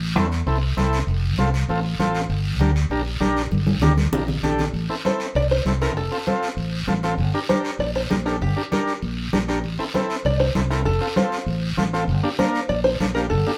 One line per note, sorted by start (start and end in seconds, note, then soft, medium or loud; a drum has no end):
0.00 0.16 A1 medium
0.15 0.40 E2 medium
0.15 0.27 C4 medium
0.15 0.27 E4 medium
0.15 0.27 A4 medium
0.15 high conga medium
0.15 short guiro medium
0.32 short guiro medium
0.46 0.71 C2 medium
0.46 0.57 C4 medium
0.46 0.58 E4 medium
0.46 0.58 A4 medium
0.46 high conga soft
0.46 long guiro medium
0.77 1.01 C2 medium
0.77 0.99 C4 medium
0.77 0.99 E4 medium
0.77 0.99 A4 medium
0.77 high conga medium
0.77 short guiro medium
0.93 short guiro medium
1.07 1.38 F1 medium
1.07 high conga soft
1.07 long guiro medium
1.38 1.62 C2 medium
1.38 1.49 C4 medium
1.38 1.49 F4 medium
1.38 1.50 A4 medium
1.38 high conga medium
1.38 short guiro medium
1.54 short guiro medium
1.69 1.93 A1 medium
1.69 1.80 C4 medium
1.69 1.80 F4 medium
1.69 1.80 A4 medium
1.69 high conga soft
1.69 long guiro medium
1.99 2.24 A1 medium
1.99 2.21 C4 medium
1.99 2.21 F4 medium
1.99 2.21 A4 medium
1.99 high conga medium
1.99 short guiro medium
2.15 short guiro medium
2.29 2.59 G1 medium
2.29 high conga soft
2.29 long guiro medium
2.59 2.84 D2 medium
2.59 2.71 D4 medium
2.59 2.71 G4 medium
2.59 2.71 A#4 medium
2.59 high conga medium
2.59 short guiro medium
2.76 short guiro medium
2.90 3.15 A#1 medium
2.90 3.02 D4 medium
2.90 3.02 G4 medium
2.90 3.02 A#4 medium
2.90 high conga soft
2.90 long guiro medium
3.20 3.45 A#1 medium
3.20 3.42 D4 medium
3.20 3.42 G4 medium
3.20 3.43 A#4 medium
3.20 high conga medium
3.20 short guiro medium
3.37 short guiro medium
3.51 3.81 G1 medium
3.51 high conga medium
3.51 long guiro medium
3.67 high conga medium
3.81 4.06 D2 medium
3.81 3.93 D4 medium
3.81 3.93 G4 medium
3.81 3.93 A#4 medium
3.81 low conga medium
3.81 short guiro medium
3.97 high conga medium
3.97 short guiro medium
4.12 4.37 A#1 medium
4.12 4.24 D4 medium
4.12 4.24 G4 medium
4.12 4.24 A#4 medium
4.12 low conga medium
4.12 long guiro medium
4.28 low conga medium
4.43 4.68 A#1 medium
4.43 4.65 D4 medium
4.43 4.65 G4 medium
4.43 4.65 A4 medium
4.43 low conga medium
4.43 short guiro medium
4.59 low conga medium
4.59 short guiro medium
4.73 4.86 A1 medium
4.73 high conga soft
4.73 long guiro medium
4.90 4.95 C4 medium
4.90 4.95 E4 medium
4.90 4.95 A4 medium
5.05 5.26 C4 medium
5.05 5.26 E4 medium
5.05 5.27 A4 medium
5.05 5.34 C5 medium
5.05 high conga medium
5.05 short guiro medium
5.20 short guiro medium
5.35 5.60 C2 medium
5.35 5.41 D5 loud
5.35 high conga soft
5.35 long guiro medium
5.51 5.82 C5 medium
5.65 5.95 C2 medium
5.65 5.72 C4 medium
5.65 5.72 E4 medium
5.65 5.72 A4 medium
5.65 high conga medium
5.65 short guiro medium
5.81 5.92 C4 medium
5.81 5.92 E4 medium
5.81 5.92 A4 medium
5.81 5.97 A#4 medium
5.81 short guiro medium
5.95 6.08 F1 loud
5.95 6.25 A4 medium
5.95 high conga soft
5.95 long guiro medium
6.11 6.17 C4 medium
6.11 6.17 F4 medium
6.11 6.17 A4 medium
6.27 6.48 C4 medium
6.27 6.48 F4 medium
6.27 6.49 A4 medium
6.27 6.70 C5 medium
6.27 high conga medium
6.27 short guiro medium
6.43 short guiro medium
6.57 6.82 A1 medium
6.57 high conga soft
6.57 long guiro medium
6.87 7.19 A1 medium
6.87 6.93 C4 medium
6.87 6.94 F4 medium
6.87 6.94 A4 medium
6.87 high conga medium
6.87 short guiro medium
7.03 7.14 C4 medium
7.03 7.14 F4 medium
7.03 7.15 A4 medium
7.03 short guiro medium
7.18 7.30 G1 medium
7.18 high conga soft
7.18 long guiro medium
7.34 7.39 D4 medium
7.34 7.40 G4 medium
7.34 7.40 A#4 medium
7.49 7.71 D4 medium
7.49 7.71 G4 medium
7.49 7.71 A#4 medium
7.49 7.78 C5 medium
7.49 high conga medium
7.49 short guiro medium
7.65 short guiro medium
7.79 8.04 A#1 medium
7.79 7.85 D5 medium
7.79 high conga soft
7.79 long guiro medium
7.96 8.27 C5 medium
8.10 8.43 A#1 medium
8.10 8.16 D4 medium
8.10 8.16 G4 medium
8.10 8.16 A#4 medium
8.10 high conga medium
8.10 short guiro medium
8.25 8.36 D4 medium
8.25 8.37 G4 medium
8.25 8.37 A4 medium
8.25 8.31 A#4 medium
8.25 short guiro medium
8.41 8.54 G1 medium
8.41 8.70 G4 medium
8.41 high conga soft
8.41 long guiro medium
8.56 8.62 D4 medium
8.56 8.62 G4 medium
8.56 8.62 A#4 medium
8.72 8.93 D4 medium
8.72 8.93 G4 medium
8.72 8.94 A#4 medium
8.72 9.15 A#4 medium
8.72 high conga medium
8.72 short guiro medium
8.88 short guiro medium
9.02 9.27 A#1 medium
9.02 high conga soft
9.02 long guiro medium
9.33 9.64 A#1 medium
9.33 9.38 D4 medium
9.33 9.38 G4 medium
9.33 9.39 A#4 medium
9.33 high conga medium
9.33 short guiro medium
9.48 9.59 D4 medium
9.48 9.60 G4 medium
9.48 9.60 A#4 medium
9.48 short guiro medium
9.64 9.76 A1 medium
9.64 high conga soft
9.64 long guiro medium
9.79 9.84 C4 medium
9.79 9.85 E4 medium
9.79 9.85 A4 medium
9.94 10.16 C4 medium
9.94 10.16 E4 medium
9.94 10.16 A4 medium
9.94 10.25 C5 medium
9.94 high conga medium
9.94 short guiro medium
10.10 short guiro medium
10.25 10.49 C2 medium
10.25 10.40 D5 medium
10.25 high conga soft
10.25 long guiro medium
10.40 10.69 C5 medium
10.55 10.87 C2 medium
10.55 10.61 C4 medium
10.55 10.61 E4 medium
10.55 10.61 A4 medium
10.55 high conga medium
10.55 short guiro medium
10.70 10.81 C4 medium
10.70 10.82 E4 medium
10.70 10.82 A4 medium
10.70 10.85 A#4 medium
10.70 short guiro medium
10.85 10.98 F1 medium
10.85 11.14 A4 medium
10.85 high conga soft
10.85 long guiro medium
11.01 11.07 C4 medium
11.01 11.07 F4 medium
11.01 11.07 A4 medium
11.16 11.38 C4 medium
11.16 11.38 F4 medium
11.16 11.38 A4 medium
11.16 11.60 C5 medium
11.16 high conga medium
11.16 short guiro medium
11.32 short guiro medium
11.46 11.71 A1 medium
11.46 high conga soft
11.46 long guiro medium
11.77 12.09 A1 medium
11.77 11.83 C4 medium
11.77 11.83 F4 medium
11.77 11.84 A4 medium
11.77 high conga medium
11.77 short guiro medium
11.93 12.04 C4 medium
11.93 12.04 F4 medium
11.93 12.04 A4 medium
11.93 short guiro medium
12.08 12.20 G1 loud
12.08 high conga soft
12.08 long guiro medium
12.23 12.29 A#3 medium
12.23 12.29 D4 medium
12.23 12.29 G4 medium
12.39 12.60 A#3 medium
12.39 12.61 D4 medium
12.39 12.61 A#4 medium
12.39 12.67 C5 medium
12.39 high conga medium
12.39 short guiro medium
12.55 short guiro medium
12.69 12.94 A#1 medium
12.69 12.74 D5 medium
12.69 high conga soft
12.69 long guiro medium
12.84 13.16 C5 medium
13.00 13.32 A#1 medium
13.00 13.06 A#3 medium
13.00 13.06 D4 medium
13.00 13.06 A4 medium
13.00 high conga medium
13.00 short guiro medium
13.15 13.26 A#3 medium
13.15 13.26 D4 medium
13.15 13.26 G4 medium
13.15 13.20 A#4 medium
13.15 short guiro medium
13.30 13.43 G1 medium
13.30 13.58 A4 medium
13.30 high conga soft
13.30 long guiro medium
13.46 13.52 A#3 medium
13.46 13.52 D4 medium
13.46 13.52 G4 medium